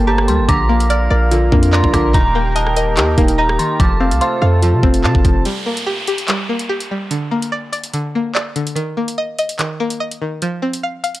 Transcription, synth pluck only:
0.00 0.28 G3 medium
0.00 0.49 A#3 medium
0.07 0.49 G4 medium
0.29 0.49 G3 medium
0.48 1.30 D3 medium
0.69 1.52 A#3 medium
0.90 1.09 D5 medium
1.10 1.71 D5 medium
1.31 1.93 D3 medium
1.53 2.15 A#3 medium
1.73 2.14 D5 loud
1.94 2.14 D3 medium
2.13 2.96 D#3 loud
2.35 3.17 A#3 medium
2.56 2.75 D#5 loud
2.77 3.37 D#5 medium
2.97 3.58 D#3 medium
3.18 3.80 A#3 medium
3.38 3.80 D#5 medium
3.59 3.80 D#3 medium
3.80 4.62 F3 loud
4.00 4.82 C4 medium
4.21 4.40 F5 medium
4.42 5.03 F5 medium
4.63 5.23 F3 medium
4.83 5.45 C4 medium
5.04 5.46 F5 medium
5.25 5.45 F3 medium
5.45 6.27 G3 loud
5.66 6.48 A#3 medium
5.86 6.07 G4 medium
6.08 6.68 G4 medium
6.28 6.90 G3 loud
6.49 7.11 A#3 medium
6.69 7.11 G4 medium
6.91 7.11 G3 medium
7.11 7.92 D3 medium
7.31 8.14 A#3 medium
7.52 7.71 D5 loud
7.73 8.34 D5 medium
7.94 8.55 D3 medium
8.15 8.77 A#3 medium
8.35 8.76 D5 medium
8.56 8.76 D3 medium
8.76 9.58 D#3 medium
8.97 9.79 A#3 medium
9.18 9.37 D#5 loud
9.39 9.99 D#5 loud
9.59 10.20 D#3 medium
9.80 10.42 A#3 medium
10.00 10.42 D#5 medium
10.22 10.42 D#3 medium
10.42 11.20 F3 loud
10.62 11.20 C4 medium
10.83 11.02 F5 medium
11.04 11.20 F5 medium

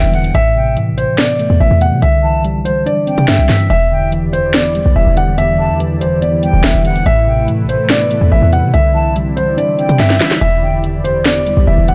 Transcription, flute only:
0.00 0.11 G5 medium
0.14 0.34 F#5 medium
0.55 0.75 G5 medium
2.23 2.43 A5 medium
3.07 3.47 G5 medium
3.49 3.69 E5 medium
3.91 4.11 G5 medium
5.59 5.79 A5 medium
6.43 6.82 G5 medium
6.85 7.05 F#5 medium
7.27 7.47 G5 medium
8.95 9.15 A5 medium
9.78 10.18 G5 medium
10.20 10.40 E5 medium
10.62 10.82 G5 medium

